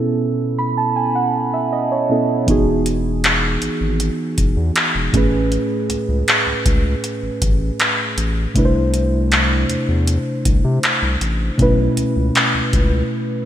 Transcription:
0.00 2.05 B2 medium
0.00 2.06 B3 medium
0.00 2.06 C#4 medium
0.00 2.07 E4 medium
0.00 2.11 A4 medium
0.59 0.76 B5 medium
0.77 0.95 A5 medium
0.96 1.14 G#5 medium
1.15 1.50 F#5 medium
1.54 1.71 E5 medium
1.73 1.90 D#5 medium
1.92 2.44 C#5 medium
2.09 2.48 B2 medium
2.09 2.46 B3 soft
2.09 2.48 C#4 soft
2.09 2.48 E4 soft
2.09 2.49 A4 medium
2.46 3.58 E1 loud
2.46 5.09 E3 medium
2.46 5.10 B3 medium
2.46 5.10 D#4 medium
2.46 5.11 F#4 medium
2.46 kick loud
2.46 closed hi-hat soft
2.51 5.11 G#4 medium
2.86 closed hi-hat medium
3.24 clap loud
3.24 closed hi-hat medium
3.62 3.69 G#1 soft
3.62 closed hi-hat medium
3.81 4.10 G#1 medium
4.00 closed hi-hat medium
4.38 4.53 E1 medium
4.38 kick medium
4.38 closed hi-hat medium
4.56 4.71 E2 medium
4.76 clap loud
4.76 closed hi-hat medium
4.95 5.10 E1 medium
5.12 5.58 A1 loud
5.12 8.13 A2 medium
5.12 8.13 A3 medium
5.12 8.14 C#4 medium
5.12 8.14 G#4 medium
5.12 kick loud
5.12 closed hi-hat medium
5.17 8.15 B4 medium
5.52 closed hi-hat medium
5.90 5.97 C#2 soft
5.90 closed hi-hat medium
6.09 6.23 C#2 loud
6.28 clap medium
6.28 closed hi-hat medium
6.46 6.54 C#2 soft
6.66 6.95 C#2 medium
6.66 kick medium
6.66 closed hi-hat medium
7.04 closed hi-hat medium
7.23 7.30 A1 medium
7.42 7.71 A1 medium
7.42 kick medium
7.42 closed hi-hat medium
7.80 clap loud
7.80 closed hi-hat medium
8.17 8.47 A1 medium
8.17 closed hi-hat medium
8.54 9.65 C2 medium
8.54 11.55 C3 medium
8.54 11.55 A3 medium
8.54 11.56 D4 medium
8.54 11.56 E4 medium
8.54 kick loud
8.54 closed hi-hat medium
8.59 8.64 B4 medium
8.65 11.60 C5 medium
8.94 closed hi-hat medium
9.32 clap medium
9.32 closed hi-hat medium
9.69 9.77 E2 soft
9.69 closed hi-hat medium
9.88 10.18 E2 medium
10.07 closed hi-hat medium
10.45 10.60 C2 medium
10.45 kick medium
10.45 closed hi-hat medium
10.64 10.79 C3 medium
10.83 clap loud
10.83 closed hi-hat medium
11.02 11.17 C2 medium
11.21 11.51 A1 medium
11.21 closed hi-hat medium
11.58 11.89 B1 loud
11.58 13.45 B2 medium
11.58 13.45 A3 medium
11.58 13.45 C#4 medium
11.58 13.45 E4 medium
11.58 kick loud
11.58 closed hi-hat medium
11.62 13.45 B4 medium
11.97 12.05 C#2 soft
11.97 closed hi-hat medium
12.16 12.31 C#2 medium
12.35 clap loud
12.35 closed hi-hat medium
12.54 12.62 C#2 soft
12.73 13.03 C#2 loud
12.73 kick medium
12.73 closed hi-hat medium

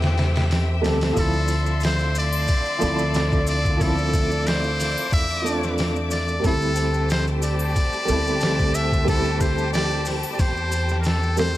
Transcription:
0.00 0.84 E2 medium
0.00 0.13 G3 medium
0.00 0.14 A3 medium
0.00 0.15 C4 medium
0.00 0.16 E4 medium
0.00 1.12 G4 medium
0.00 1.12 C5 medium
0.00 6.39 E5 medium
0.00 1.14 G5 medium
0.00 snare loud
0.00 open hi-hat medium
0.18 snare loud
0.18 open hi-hat medium
0.36 snare loud
0.36 open hi-hat medium
0.51 snare loud
0.51 open hi-hat medium
0.82 1.13 D2 medium
0.82 1.12 G3 medium
0.82 1.12 A3 medium
0.82 1.13 C4 medium
0.82 1.13 A4 loud
0.82 open hi-hat medium
0.86 snare loud
1.01 snare loud
1.01 open hi-hat medium
1.13 2.46 D2 medium
1.13 6.40 D3 medium
1.13 2.76 F3 medium
1.13 2.77 A3 medium
1.13 6.40 D5 medium
1.13 3.77 C6 medium
1.13 kick loud
1.13 maracas medium
1.17 2.78 C4 medium
1.17 2.79 E4 medium
1.17 1.80 A4 medium
1.17 open hi-hat medium
1.33 maracas soft
1.48 open hi-hat medium
1.48 maracas loud
1.66 maracas soft
1.80 open hi-hat loud
1.80 maracas medium
1.85 2.15 C5 medium
1.85 snare loud
1.99 closed hi-hat soft
1.99 maracas soft
2.15 3.45 D5 loud
2.15 open hi-hat medium
2.15 maracas medium
2.33 triangle medium
2.33 maracas soft
2.48 kick loud
2.48 open hi-hat medium
2.48 maracas medium
2.65 closed hi-hat soft
2.65 maracas soft
2.79 4.94 D2 medium
2.79 3.75 F3 medium
2.79 3.76 A3 medium
2.79 3.77 C4 medium
2.79 open hi-hat medium
2.79 maracas medium
2.85 3.78 E4 loud
2.99 maracas soft
3.14 snare loud
3.14 open hi-hat medium
3.14 maracas medium
3.32 kick medium
3.32 maracas soft
3.47 3.84 D5 loud
3.47 open hi-hat medium
3.47 maracas medium
3.65 kick loud
3.65 maracas soft
3.77 5.40 F3 medium
3.77 5.41 A3 medium
3.77 6.42 D6 medium
3.77 kick loud
3.77 maracas medium
3.81 5.42 C4 medium
3.81 5.43 E4 medium
3.81 4.49 A4 loud
3.81 open hi-hat medium
3.98 maracas soft
4.13 kick loud
4.13 open hi-hat medium
4.13 maracas loud
4.31 maracas soft
4.46 5.13 C5 loud
4.46 snare loud
4.46 open hi-hat loud
4.46 maracas medium
4.64 maracas soft
4.80 snare soft
4.80 open hi-hat medium
4.80 maracas medium
4.97 triangle medium
4.97 maracas soft
5.12 6.41 E2 medium
5.12 5.75 E5 loud
5.12 kick loud
5.12 open hi-hat medium
5.12 maracas medium
5.30 maracas soft
5.42 6.40 A3 medium
5.42 6.41 C4 medium
5.42 6.39 F4 medium
5.46 6.42 D4 medium
5.46 open hi-hat medium
5.46 maracas medium
5.63 snare soft
5.63 maracas soft
5.78 snare loud
5.78 open hi-hat medium
5.78 maracas medium
5.96 maracas soft
6.11 6.42 D5 loud
6.11 snare soft
6.11 open hi-hat medium
6.11 maracas medium
6.28 maracas soft
6.40 8.03 G3 medium
6.40 8.04 A3 medium
6.44 7.73 D2 medium
6.44 8.05 C4 medium
6.44 8.06 E4 medium
6.44 11.57 G4 medium
6.44 7.07 A4 loud
6.44 11.57 C5 medium
6.44 11.57 G5 medium
6.44 11.57 A5 loud
6.44 kick loud
6.44 open hi-hat medium
6.44 maracas medium
6.61 maracas soft
6.76 open hi-hat medium
6.76 maracas medium
6.94 maracas soft
7.09 7.26 C5 medium
7.09 snare loud
7.09 open hi-hat loud
7.09 maracas medium
7.27 closed hi-hat soft
7.27 maracas soft
7.42 8.76 D5 loud
7.42 open hi-hat medium
7.42 maracas medium
7.59 triangle medium
7.59 maracas soft
7.76 kick loud
7.76 open hi-hat medium
7.76 maracas medium
7.92 closed hi-hat soft
7.92 maracas soft
8.05 10.21 D2 medium
8.05 9.02 G3 medium
8.05 9.03 A3 medium
8.05 9.04 C4 medium
8.05 open hi-hat medium
8.05 maracas medium
8.12 9.06 E4 medium
8.27 maracas soft
8.41 snare loud
8.41 open hi-hat medium
8.41 maracas medium
8.59 kick medium
8.59 maracas soft
8.74 9.08 E5 loud
8.74 open hi-hat medium
8.74 maracas loud
8.92 kick loud
8.92 maracas soft
9.05 10.68 G3 medium
9.05 10.69 A3 medium
9.05 9.42 A4 loud
9.05 kick loud
9.05 open hi-hat medium
9.05 maracas medium
9.09 10.70 C4 medium
9.09 10.71 E4 medium
9.24 maracas soft
9.41 9.73 C5 medium
9.41 kick loud
9.41 open hi-hat medium
9.41 maracas medium
9.58 maracas soft
9.73 10.10 D5 loud
9.73 snare loud
9.73 open hi-hat medium
9.73 maracas medium
9.90 maracas soft
10.05 snare soft
10.05 open hi-hat medium
10.05 maracas medium
10.23 triangle medium
10.23 maracas soft
10.33 10.42 D5 medium
10.39 11.57 E2 loud
10.39 10.99 C5 loud
10.39 kick loud
10.39 open hi-hat medium
10.39 maracas medium
10.57 maracas soft
10.72 open hi-hat medium
10.72 maracas loud
10.89 snare medium
10.89 maracas soft
11.00 11.08 A#4 medium
11.00 maracas medium
11.05 11.38 A4 loud
11.05 snare loud
11.05 open hi-hat medium
11.23 maracas soft
11.37 11.57 G3 medium
11.37 11.57 A3 medium
11.37 11.57 C4 medium
11.37 11.57 A4 loud
11.37 11.57 C5 loud
11.37 snare loud
11.37 open hi-hat medium
11.37 maracas medium

